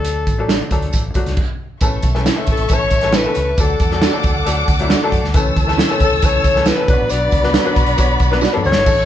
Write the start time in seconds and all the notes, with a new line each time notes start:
Already playing: D2 F#3 A3 D4 A4
0.05 closed hi-hat, tambourine
0.27 A1, kick, closed hi-hat, tambourine
0.38 F#3 A3 D4 A4
0.48 D4 F#4 A4 D5, snare, closed hi-hat, tambourine
0.70 D2 F#3 A3 D4 A4, kick, closed hi-hat, tambourine
0.82 closed hi-hat
0.93 A1, kick, closed hi-hat, tambourine
1.14 F#3 A3 D4 F#4, muted fingered electric bass stroke, kick, closed hi-hat, tambourine
1.26 C#2, snare, closed hi-hat
1.37 kick, crash
1.81 A1 E3 A3 C#4 A4 E5 C#6, kick, closed hi-hat, tambourine
2.02 B1, kick, closed hi-hat, tambourine
2.15 E3 A3 C#4 A4, snare
2.25 C#4 E4 A4 C#5, snare, closed hi-hat, tambourine
2.36 E3 A3 C#4 E4
2.47 A1, kick, closed hi-hat, tambourine
2.52 A4
2.57 A1, closed hi-hat
2.69 A1 E3 A3 C#4 A4, kick, closed hi-hat, tambourine
2.74 C#5
2.91 A1, kick, closed hi-hat, tambourine
3.01 E3 A3 C#4 A4, snare, closed hi-hat
3.12 C#4 E4 A4 B4 C#5, snare, closed hi-hat, tambourine
3.26 E3 A3 C#4 A4
3.35 C#2, closed hi-hat, tambourine
3.58 D2 F#3 A3 D4 A4 F#5 D6, kick, closed hi-hat, tambourine
3.80 E2 A4, kick, closed hi-hat, tambourine
3.90 F#3 A3 D4 A4, snare
4.02 D4 F#4 A4 D5, snare, closed hi-hat, tambourine
4.11 F#3 A3 D4 A4
4.23 D2, kick, closed hi-hat, tambourine
4.35 D2
4.45 D2 F#3 A3 D4 A4, closed hi-hat, tambourine
4.68 D2, kick, closed hi-hat, tambourine
4.79 F#3 A3 D4 E4, closed hi-hat
4.89 D4 F#4 A4 D5, snare, closed hi-hat, tambourine
5.02 F#3 A3 D4 A4
5.12 F#2, kick, closed hi-hat, tambourine
5.24 D2, snare
5.33 C#2 E3 A3 C#4 A4 C#5 A5 E6, kick, closed hi-hat, tambourine
5.56 D2, kick, closed hi-hat, tambourine
5.67 E3 A3 C#4 A4, snare
5.78 C#4 E4 A4 C#5, snare, closed hi-hat, tambourine
5.90 E3 A3 C#4 A4
6.00 C#2 A4, kick, closed hi-hat, tambourine
6.12 C#2
6.22 C#2 E3 A3 C#4 A4 C#5, kick, closed hi-hat, tambourine
6.44 C#2, kick, closed hi-hat, tambourine
6.56 E3 A3 C#4 A4, snare
6.66 C#4 E4 A4 B4 C#5, snare, closed hi-hat, tambourine
6.77 E3 A3 C#4 A4
6.88 B1 F#3 B3 D4 F#4 B4 D5 B5, kick, closed hi-hat, tambourine
7.00 A1
7.09 B1 D5, closed hi-hat, tambourine
7.31 C#2, kick, closed hi-hat, tambourine
7.43 F#3 B3 D4 B4, snare
7.54 D4 F#4 B4 D5, snare, closed hi-hat, tambourine
7.64 F#3 B3 D4 B4
7.76 B1, kick, closed hi-hat, tambourine
7.87 B1, closed hi-hat
7.96 B1 F#3 B3 D4 C#5, kick, closed hi-hat, tambourine
8.20 B1, kick, closed hi-hat, tambourine
8.31 F#3 B3 D4 B4, snare
8.41 D4 F#4 B4 D5, snare, tambourine
8.52 F#3 B3 D4 A4
8.57 mid tom
8.64 D2 C#5, tambourine
8.72 G1, snare
8.84 A1 E3 C#4 E4 A4 C#5 C#6, kick, crash, tambourine